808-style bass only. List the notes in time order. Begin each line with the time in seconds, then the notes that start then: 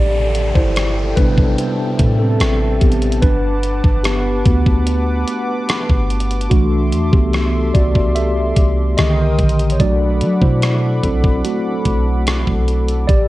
Already playing: A1
0.55 G1
1.17 A1
1.99 A2
2.41 A1
2.82 A1
3.23 G1
3.84 G1
4.46 D2
5.90 G1
6.51 C2
6.93 E2
7.13 C2
7.75 C2
8.57 C2
8.98 C2
9.39 A#1
9.80 B1
10.21 F#3
10.42 B2
11.04 B1
11.86 B1
12.47 B1
13.09 A1